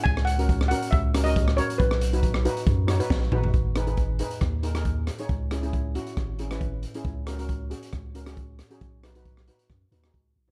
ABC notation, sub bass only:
X:1
M:4/4
L:1/8
Q:1/4=137
K:B
V:1 name="Sub bass" clef=bass
C,,4 C,,4 | B,,,4 F,,2 A,,, G,,, | G,,,4 D,,4 | C,,4 G,,,4 |
C,,4 C,,4 | B,,,4 F,, D,, C,, B,,, |]